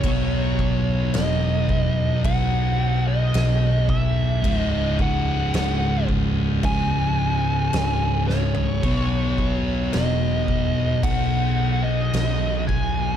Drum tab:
CC |x---x---x---x---|x---x---x---x---|x---x---x---x---|
SD |----o-------o---|----o-------o-o-|----o-------o---|
FT |----------------|---------------o|----------------|
BD |o-o---o-o-----o-|o-o---o-o-------|o-o---o-o-----o-|